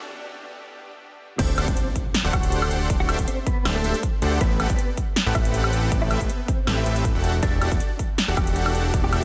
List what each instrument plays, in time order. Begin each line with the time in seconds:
Already playing: ambient pad E3 B3 D4 G4
1.39 analog synth bass D1, clean electric guitar C4 C5, supersaw synth D4 G4 A4 C5 E5, kick, closed hi-hat, crash, impact
1.58 analog synth bass D1, supersaw synth D4 G4 A4 C5 F#5, closed hi-hat, high woodblock
1.68 analog synth bass D1, clean electric guitar C4 C5, supersaw synth G4, kick, closed hi-hat
1.77 closed hi-hat
1.96 kick, closed hi-hat
2.14 snare, closed hi-hat
2.24 analog synth bass D1, supersaw synth D4 G4 A4 C5 F#5
2.33 analog synth bass D1, clean electric guitar F#4 F#5, supersaw synth G4 A4, kick, closed hi-hat, high woodblock
2.43 closed hi-hat
2.52 closed hi-hat
2.62 high woodblock
2.71 closed hi-hat
2.90 analog synth bass D1, supersaw synth D4 G4 A4 C5 D5, kick, closed hi-hat
3.00 clean electric guitar F#4 F#5
3.09 analog synth bass D1, supersaw synth D4 G4 A4 C5 E5, closed hi-hat, high woodblock
3.19 analog synth bass D1, kick, closed hi-hat
3.28 clean electric guitar C4 C5, closed hi-hat
3.46 clean electric guitar B3 B4, kick, closed hi-hat
3.65 analog synth bass D1, supersaw synth D4 G4 A4 C5 E5, snare, closed hi-hat, high woodblock
3.75 clean electric guitar A3 A4
3.84 analog synth bass D1, supersaw synth D4 G4 A4 C5 E5, closed hi-hat
3.94 closed hi-hat
4.03 kick, closed hi-hat
4.22 analog synth bass D2, supersaw synth D4 G4 A4 C5 F#5, closed hi-hat
4.41 analog synth bass A1, clean electric guitar B3 B4, supersaw synth C4 G4 A4 B4 E5, kick, closed hi-hat
4.60 analog synth bass A1, supersaw synth C4 G4 A4 B4 F#5, closed hi-hat, high woodblock
4.70 analog synth bass A1, clean electric guitar B3 B4, supersaw synth D5, kick, closed hi-hat
4.79 closed hi-hat
4.97 kick, closed hi-hat
5.16 snare, closed hi-hat
5.26 analog synth bass A1, supersaw synth C4 G4 A4 B4 F#5
5.35 analog synth bass A1, supersaw synth C4, clean electric guitar E4 E5, kick, closed hi-hat, high woodblock
5.45 closed hi-hat
5.54 closed hi-hat
5.64 high woodblock
5.73 closed hi-hat
5.92 analog synth bass A1, supersaw synth C4 G4 A4 B4 D5, kick, closed hi-hat
6.02 clean electric guitar E4 E5
6.11 analog synth bass A1, supersaw synth C4 G4 A4 B4 E5, closed hi-hat, high woodblock
6.21 analog synth bass A1, supersaw synth C4 A4, kick, closed hi-hat
6.29 clean electric guitar B3 B4, closed hi-hat
6.48 clean electric guitar C4 C5, kick, closed hi-hat
6.67 analog synth bass A1, supersaw synth C4 G4 A4 B4 E5, snare, closed hi-hat, high woodblock
6.77 clean electric guitar E4 E5
6.86 analog synth bass A1, supersaw synth C4 G4 A4 B4 E5, closed hi-hat
6.96 closed hi-hat
7.05 kick, closed hi-hat
7.15 analog synth bass E1, supersaw synth D4 F#4 G4 A4 F#5
7.24 closed hi-hat
7.43 analog synth bass E1, supersaw synth D4 F#4 G4 A4 E5, clean electric guitar D4 D5, kick, closed hi-hat
7.62 analog synth bass E1, supersaw synth D4 F#4 G4 A4 F#5, closed hi-hat, high woodblock
7.72 analog synth bass E1, clean electric guitar D4 D5, supersaw synth G4 A4, kick, closed hi-hat
7.80 closed hi-hat
7.99 kick, closed hi-hat
8.18 snare, closed hi-hat
8.28 analog synth bass E1, supersaw synth D4 F#4 G4 A4 F#5
8.37 analog synth bass E1, supersaw synth D4 F#4 G4 A4 F#5, clean electric guitar G4 G5, kick, closed hi-hat, high woodblock
8.47 closed hi-hat
8.56 closed hi-hat
8.66 high woodblock
8.75 closed hi-hat
8.94 analog synth bass E1, supersaw synth D4 F#4 G4 A4 D5, kick, closed hi-hat
9.04 clean electric guitar G4 G5
9.13 analog synth bass E1, supersaw synth D4 F#4 G4 A4 E5, closed hi-hat, high woodblock